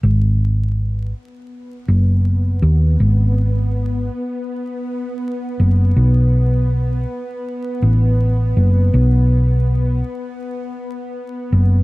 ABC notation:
X:1
M:4/4
L:1/8
Q:"Swing 16ths" 1/4=81
K:G#phr
V:1 name="Synth drone"
B,8- | B,8- | B,8- | B,8 |]
V:2 name="Fingered electric bass" clef=bass
G,,,3 z2 F,,,2 D,, | G,,,3 z4 F,,, | B,,,3 z2 A,,,2 F,,, | B,,,3 z4 F,,, |]